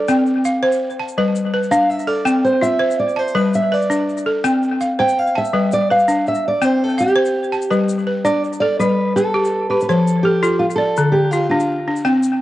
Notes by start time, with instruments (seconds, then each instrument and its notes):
Already playing: balafon A4, steel-string acoustic guitar D5
0.08 balafon C4 G5, shaker
0.26 shaker
0.45 balafon F5, shaker
0.63 balafon C5
0.72 shaker
0.90 shaker
1.00 balafon A5
1.08 shaker
1.18 balafon G3 B4
1.36 shaker
1.54 balafon B4
1.63 shaker
1.71 balafon D4, steel-string acoustic guitar F5, shaker
1.90 steel-string acoustic guitar E5, shaker
1.99 shaker
2.07 balafon A4, steel-string acoustic guitar D5
2.25 balafon C4 G5, shaker
2.45 steel-string acoustic guitar C5, shaker
2.62 balafon F4, steel-string acoustic guitar E5, shaker
2.79 balafon C5
2.91 shaker
2.99 steel-string acoustic guitar D5
3.09 shaker
3.16 steel-string acoustic guitar C5, balafon A5
3.28 shaker
3.35 balafon G3 B4, steel-string acoustic guitar B4
3.54 steel-string acoustic guitar E5, shaker
3.72 balafon B4, steel-string acoustic guitar D5
3.82 shaker
3.90 balafon D4, shaker
4.09 shaker
4.17 shaker
4.26 balafon A4
4.44 balafon C4 G5, shaker
4.63 shaker
4.81 balafon F5, shaker
4.99 balafon C5, steel-string acoustic guitar G5
5.08 shaker
5.19 steel-string acoustic guitar F5
5.27 shaker
5.35 steel-string acoustic guitar E5, balafon A5
5.45 shaker
5.53 balafon G3 B4
5.72 steel-string acoustic guitar D5, shaker
5.90 balafon B4, steel-string acoustic guitar F5
5.99 shaker
6.08 balafon D4, shaker
6.27 steel-string acoustic guitar E5, shaker
6.35 shaker
6.48 steel-string acoustic guitar D5
6.62 balafon C4 G5, steel-string acoustic guitar C5, shaker
6.84 steel-string acoustic guitar A4
6.89 shaker
6.98 steel-string acoustic guitar G4, balafon F5, shaker
7.08 shaker
7.16 balafon C5
7.25 shaker
7.44 shaker
7.52 balafon A5, shaker
7.62 shaker
7.71 balafon G3 B4, shaker
7.89 shaker
7.98 shaker
8.07 balafon B4
8.25 balafon D4, steel-string acoustic guitar D5, shaker
8.44 shaker
8.53 shaker
8.60 balafon A4, steel-string acoustic guitar D5
8.79 balafon G3, steel-string acoustic guitar B4, shaker
9.16 steel-string acoustic guitar A4, balafon B4, shaker
9.34 balafon G4
9.45 shaker
9.70 balafon G4, steel-string acoustic guitar B4
9.80 steel-string acoustic guitar B4, shaker
9.89 balafon F3 C5, steel-string acoustic guitar A4, shaker
10.07 shaker
10.23 steel-string acoustic guitar G4, balafon A4
10.43 balafon F4 A4, shaker
10.59 steel-string acoustic guitar F4
10.70 shaker
10.76 steel-string acoustic guitar A4, balafon D5
10.97 balafon D3, shaker
11.12 steel-string acoustic guitar G4
11.31 steel-string acoustic guitar F4, balafon F4, shaker
11.50 balafon D4, steel-string acoustic guitar F4
11.60 shaker
11.88 balafon D4
11.96 shaker
12.05 balafon C4 G5, shaker
12.23 shaker